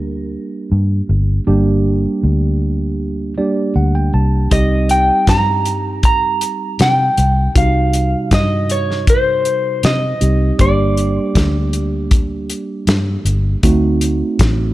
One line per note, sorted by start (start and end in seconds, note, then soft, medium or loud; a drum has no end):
0.00 0.35 D2 medium
0.00 1.44 G3 medium
0.00 1.44 A#3 medium
0.00 1.44 D4 medium
0.00 1.44 G4 medium
0.00 1.44 A#4 medium
0.72 1.01 G2 medium
1.09 1.38 G1 medium
1.47 2.05 G1 loud
1.47 3.33 G3 medium
1.47 3.34 A#3 medium
1.47 3.33 D4 medium
1.47 3.34 G4 medium
2.23 3.39 D2 medium
3.38 4.50 G3 medium
3.38 4.52 A#3 soft
3.38 4.52 D4 soft
3.38 4.50 G4 medium
3.38 3.73 D5 medium
3.76 4.10 D2 medium
3.76 3.94 F#5 medium
3.95 4.12 G5 medium
4.14 4.48 C2 medium
4.14 4.49 A5 medium
4.51 5.09 C2 medium
4.51 7.51 G3 medium
4.51 7.51 C4 medium
4.51 7.51 D#4 medium
4.51 7.51 G4 medium
4.51 4.90 D#5 medium
4.51 kick medium
4.51 closed hi-hat medium
4.89 5.26 G5 medium
4.89 closed hi-hat medium
5.27 6.43 G2 medium
5.27 6.04 A#5 medium
5.27 kick medium
5.27 snare loud
5.27 closed hi-hat medium
5.65 closed hi-hat medium
6.03 6.81 A#5 loud
6.03 kick loud
6.03 closed hi-hat medium
6.41 closed hi-hat medium
6.79 7.09 C3 medium
6.79 7.57 G5 medium
6.79 snare medium
6.79 closed hi-hat medium
7.17 7.47 C2 loud
7.17 closed hi-hat medium
7.55 8.13 C2 medium
7.55 10.17 C3 medium
7.55 10.17 G3 medium
7.55 10.17 D#4 medium
7.55 10.17 F#4 medium
7.55 8.28 F5 medium
7.55 kick loud
7.55 closed hi-hat medium
7.93 closed hi-hat medium
8.31 9.47 G2 medium
8.31 8.72 D#5 medium
8.31 kick medium
8.31 snare loud
8.31 closed hi-hat medium
8.70 9.06 C#5 medium
8.70 closed hi-hat medium
8.91 snare soft
9.07 9.87 C5 medium
9.07 kick loud
9.07 closed hi-hat medium
9.45 closed hi-hat medium
9.83 10.12 C3 medium
9.83 10.61 D#5 medium
9.83 snare loud
9.83 closed hi-hat medium
10.21 10.50 C2 medium
10.21 10.58 G3 soft
10.21 10.59 C4 soft
10.21 10.59 D#4 soft
10.21 10.58 G4 soft
10.21 closed hi-hat medium
10.59 11.17 G1 medium
10.59 13.59 G3 medium
10.59 13.59 A#3 medium
10.59 13.59 D4 medium
10.59 13.59 G4 medium
10.59 13.60 D5 medium
10.59 kick loud
10.59 closed hi-hat medium
10.97 closed hi-hat medium
11.35 12.51 D2 medium
11.35 kick medium
11.35 snare loud
11.35 closed hi-hat medium
11.73 closed hi-hat medium
12.11 kick loud
12.11 closed hi-hat medium
12.50 closed hi-hat medium
12.87 13.16 G2 medium
12.87 snare loud
12.87 closed hi-hat medium
13.25 13.54 G1 loud
13.25 closed hi-hat medium
13.63 14.21 D2 medium
13.63 14.74 A3 medium
13.63 14.74 C4 medium
13.63 14.74 D#4 medium
13.63 14.74 F#4 medium
13.63 kick loud
13.63 closed hi-hat medium
14.01 closed hi-hat medium
14.39 14.74 A1 medium
14.39 kick medium
14.39 snare loud
14.39 closed hi-hat medium